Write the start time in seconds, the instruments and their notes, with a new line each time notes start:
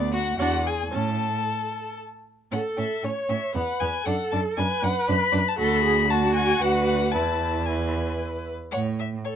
Already playing: cello D2, viola B3, violin D5
0.12 violin F#4 F#5
0.39 cello E2, viola D4, violin F#4 F#5
0.65 violin G#4 G#5
0.92 cello A2, viola C#4, violin A4 A5
2.52 cello A2, violin C#4 F#5, viola A4
2.77 cello A2, violin C#4 E5
3.03 cello A2, violin C#4 C#5, viola C#5
3.29 cello A2, violin C#4 E5
3.55 cello E2, violin B3 F#5, viola B4
3.80 cello E2, violin B3 G#5
4.05 cello F#2, violin D4 F#5, viola A4
4.31 cello F#2, violin D4 A5
4.57 cello F#2, violin D4 G#5, viola B4
4.82 cello F#2, violin D4 F#5
5.08 cello F#2, violin D4 B5
5.32 cello F#2, violin D4
5.48 violin A5
5.57 cello D2, violin F#4 B5, viola A4
5.84 viola G#4
6.09 violin F#4 A5, viola F#4
6.35 violin G#5
6.60 cello D2, violin B4 F#5
6.86 violin F#5
7.12 cello E2, viola E4, violin B4 A5
7.65 violin B4 G#5
8.71 cello A2, violin C#5 F#5
8.99 violin E5
9.25 viola A4, violin C#5